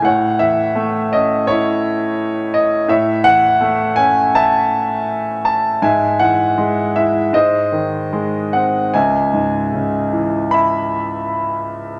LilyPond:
<<
  \new Staff \with { instrumentName = "Grand piano" } { \time 4/4 \key a \lydian \tempo 4 = 80 << { fis''8 e''4 dis''8 cis''4. dis''8 | e''8 fis''4 gis''8 a''4. a''8 | gis''8 fis''4 e''8 dis''4. fis''8 | gis''2 b''2 | } \\ { cis''2 e'2 | cis''2 e''2 | e''2 bis'2 | e''2 e''2 | } >> }
  \new Staff \with { instrumentName = "Grand piano" } { \clef bass \time 4/4 \key a \lydian a,8 e8 a8 cis'2 r8 | a,8 e8 a8 cis'2 r8 | gis,8 e8 gis8 e'8 gis,8 dis8 gis8 bis8 | cis,8 gis,8 cis8 e2 r8 | }
>>